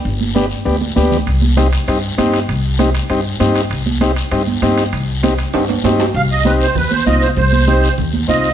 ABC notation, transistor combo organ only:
X:1
M:4/4
L:1/8
Q:1/4=197
K:Cm
V:1 name="Transistor combo organ"
z2 [=B,DG] z [B,DG] z [B,DG] z | z2 [CEG] z [CEG] z [CEG] z | z2 [CEG] z [CEG] z [CEG] z | z2 [CEG] z [CEG] z [CEG] z |
z2 [CEG] z [CEG] z [CEG] z | z2 [CEG] z3 [CEF] z | z2 [CEG] z3 [CEF] z |]